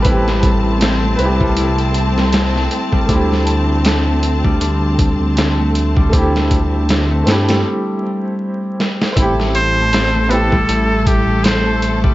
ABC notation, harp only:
X:1
M:4/4
L:1/16
Q:"Swing 16ths" 1/4=79
K:Am
V:1 name="Harp"
E4 C A, z G, E4 C A, z G, | D4 C A, z G, D4 C A, z G, | D4 C A, z G, z8 | E4 C A, z G, E4 C A, z G, |]